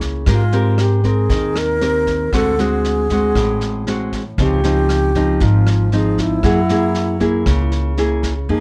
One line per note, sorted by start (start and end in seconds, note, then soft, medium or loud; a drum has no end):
0.00 0.23 C#2 medium
0.00 0.24 C#3 medium
0.00 0.24 A#3 medium
0.00 0.24 E4 medium
0.00 0.24 G#4 medium
0.00 kick soft
0.00 snare soft
0.26 1.26 G#2 loud
0.26 1.27 G#3 soft
0.26 0.42 C4 medium
0.26 0.42 G4 medium
0.26 0.43 A#4 medium
0.26 kick medium
0.26 cross-stick medium
0.26 snare soft
0.31 0.82 F4 loud
0.52 1.00 C4 medium
0.52 1.00 G4 medium
0.52 1.01 A#4 medium
0.52 snare soft
0.78 1.08 G4 medium
0.78 cross-stick medium
0.78 snare soft
1.04 1.77 C4 medium
1.04 1.59 G#4 medium
1.04 1.78 A#4 medium
1.04 kick soft
1.04 snare soft
1.30 2.29 D#2 medium
1.30 2.30 D#3 medium
1.30 kick medium
1.30 snare soft
1.56 2.34 A#4 loud
1.56 cross-stick medium
1.56 snare soft
1.81 2.31 C4 soft
1.81 2.31 G4 medium
1.81 2.31 A#4 medium
1.81 snare soft
2.07 kick soft
2.07 snare soft
2.32 3.31 D2 medium
2.32 3.33 D3 medium
2.32 2.54 G#3 medium
2.32 2.55 C4 medium
2.32 2.55 F#4 medium
2.32 2.62 A4 loud
2.32 kick medium
2.32 cross-stick medium
2.32 snare soft
2.58 3.06 G#3 medium
2.58 3.06 C4 medium
2.58 3.06 F#4 medium
2.58 4.14 G#4 loud
2.58 snare soft
2.85 snare soft
3.10 3.84 G#3 medium
3.10 3.84 C4 medium
3.10 3.84 F#4 medium
3.10 kick soft
3.10 snare soft
3.35 4.35 A1 medium
3.35 4.36 A2 medium
3.35 kick medium
3.35 cross-stick medium
3.35 snare soft
3.61 snare soft
3.87 4.22 G#3 medium
3.87 4.22 C4 medium
3.87 4.22 F#4 medium
3.87 snare soft
4.12 kick soft
4.12 snare soft
4.38 5.37 C#2 medium
4.38 5.39 C#3 medium
4.38 4.60 F3 medium
4.38 4.61 C4 medium
4.38 4.61 D#4 medium
4.38 5.44 G4 loud
4.38 kick medium
4.38 cross-stick medium
4.38 snare soft
4.64 5.11 F3 medium
4.64 5.11 C4 medium
4.64 5.12 D#4 medium
4.64 snare soft
4.89 cross-stick medium
4.89 snare soft
5.15 5.88 F3 medium
5.15 5.89 C4 medium
5.15 5.89 D#4 medium
5.15 kick soft
5.15 snare soft
5.40 6.40 G#1 medium
5.40 6.41 G#2 medium
5.40 5.93 F4 medium
5.40 kick medium
5.40 snare soft
5.67 cross-stick medium
5.67 snare soft
5.92 6.42 F3 medium
5.92 6.42 C4 medium
5.92 6.42 D#4 medium
5.92 6.22 G#4 medium
5.92 snare soft
6.18 7.73 E4 loud
6.18 kick soft
6.18 snare soft
6.43 7.42 F#2 medium
6.43 7.44 F#3 medium
6.43 6.59 A#3 medium
6.43 6.59 E4 soft
6.43 6.59 G#4 medium
6.43 kick medium
6.43 cross-stick medium
6.43 snare soft
6.69 7.17 A#3 medium
6.69 7.17 E4 medium
6.69 7.18 G#4 medium
6.69 snare soft
6.95 snare soft
7.20 7.94 A#3 medium
7.20 7.94 E4 medium
7.20 7.94 G#4 medium
7.20 kick soft
7.20 snare soft
7.46 8.45 C#2 medium
7.46 8.47 C#3 medium
7.46 kick medium
7.46 cross-stick medium
7.46 snare soft
7.72 snare soft
7.97 8.33 A#3 medium
7.97 8.33 E4 medium
7.97 8.33 G#4 medium
7.97 snare soft
8.23 kick soft
8.23 snare soft
8.49 8.60 F2 loud
8.49 8.60 F3 medium
8.49 8.60 A#3 soft
8.49 8.60 D#4 loud
8.49 8.60 D#4 medium
8.49 8.60 G#4 medium